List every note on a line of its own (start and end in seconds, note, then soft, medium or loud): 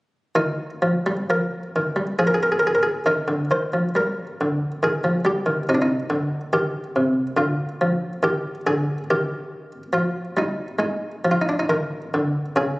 0.35 0.70 D#3 soft
0.35 1.16 D#4 medium
0.82 1.06 F3 soft
1.06 1.29 G3 soft
1.30 1.63 F3 soft
1.30 2.06 A#4 medium
1.76 1.97 D#3 soft
1.96 2.18 G3 soft
2.19 2.82 F3 soft
2.19 2.27 G#4 soft
2.27 2.36 A#4 soft
2.34 2.43 G#4 soft
2.43 2.51 A#4 soft
2.52 2.60 G#4 medium
2.59 2.68 A#4 medium
2.67 2.75 G#4 medium
2.75 2.83 A#4 medium
2.83 3.03 G#4 medium
3.06 3.27 D#3 soft
3.06 5.63 D#4 soft
3.06 3.44 A#4 medium
3.28 3.49 D3 soft
3.51 3.71 D#3 soft
3.51 3.88 C5 medium
3.73 3.94 F3 soft
3.95 4.26 G3 soft
3.95 4.82 A#4 medium
4.41 4.71 D3 soft
4.83 5.03 D#3 soft
4.83 5.19 G#4 medium
5.04 5.24 F3 soft
5.25 5.45 G3 soft
5.25 5.68 G4 medium
5.46 5.66 D#3 soft
5.69 5.99 C3 soft
5.69 5.75 D#4 medium
5.75 5.81 D4 soft
5.82 6.53 D#4 medium
6.10 6.40 D3 soft
6.53 6.83 D#3 soft
6.53 7.38 G4 medium
6.96 7.26 C3 soft
7.37 7.68 D3 soft
7.37 8.24 F4 medium
7.81 8.12 F3 soft
8.23 8.54 D#3 soft
8.23 8.61 G4 medium
8.67 8.98 D3 soft
8.67 9.03 G#4 medium
9.10 9.72 D#3 soft
9.10 9.83 G4 medium
9.93 10.24 F3 soft
9.93 10.37 F4 medium
10.37 10.67 G3 soft
10.37 10.79 D#4 medium
10.79 11.11 G#3 soft
10.79 11.24 D#4 medium
11.25 11.57 F3 soft
11.31 11.41 F4 medium
11.42 11.51 D#4 medium
11.49 11.59 D4 medium
11.59 11.69 D#4 medium
11.69 12.01 D#3 soft
11.69 12.57 A#4 medium
12.14 12.45 D3 soft
12.56 12.80 C#3 soft
12.56 12.80 G#4 medium